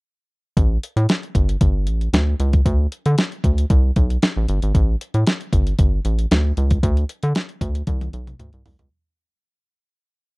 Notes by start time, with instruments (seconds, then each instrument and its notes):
0.57 analog synth bass A1, kick, closed hi-hat
0.83 closed hi-hat
0.96 analog synth bass A2, closed hi-hat
1.09 snare, closed hi-hat
1.23 closed hi-hat
1.35 analog synth bass G1, kick, closed hi-hat
1.49 closed hi-hat
1.61 analog synth bass G1, kick, closed hi-hat
1.87 analog synth bass A1, closed hi-hat
2.01 closed hi-hat
2.13 analog synth bass D2, snare, closed hi-hat
2.40 analog synth bass C#2, closed hi-hat
2.53 kick, closed hi-hat
2.66 analog synth bass D2, kick, closed hi-hat
2.92 closed hi-hat
3.06 analog synth bass D3, closed hi-hat
3.18 snare, closed hi-hat
3.32 closed hi-hat
3.44 analog synth bass D2, kick, closed hi-hat
3.58 closed hi-hat
3.70 analog synth bass C2, kick, closed hi-hat
3.96 analog synth bass B1, kick, closed hi-hat
4.10 closed hi-hat
4.22 snare, closed hi-hat
4.37 analog synth bass A1
4.48 analog synth bass G1, closed hi-hat
4.62 analog synth bass G#1, closed hi-hat
4.75 analog synth bass A1, kick, closed hi-hat
5.01 closed hi-hat
5.14 analog synth bass A2, closed hi-hat
5.27 snare, closed hi-hat
5.41 closed hi-hat
5.53 analog synth bass G1, kick, closed hi-hat
5.67 closed hi-hat
5.79 analog synth bass G1, kick, closed hi-hat
6.05 analog synth bass A1, closed hi-hat
6.19 closed hi-hat
6.31 analog synth bass D2, snare, closed hi-hat
6.57 analog synth bass C#2, closed hi-hat
6.71 kick, closed hi-hat
6.83 analog synth bass D2, kick, closed hi-hat
6.97 closed hi-hat
7.09 closed hi-hat
7.23 analog synth bass D3, closed hi-hat
7.35 snare, closed hi-hat
7.49 closed hi-hat
7.61 analog synth bass D2, kick, closed hi-hat
7.75 closed hi-hat
7.87 analog synth bass C2, kick, closed hi-hat, high tom
8.01 closed hi-hat, high tom
8.13 analog synth bass B1, closed hi-hat
8.27 closed hi-hat, mid tom
8.39 analog synth bass D2, closed hi-hat, mid tom
8.53 analog synth bass C2, closed hi-hat
8.66 analog synth bass C2, floor tom, open hi-hat
8.79 analog synth bass C#2, closed hi-hat, floor tom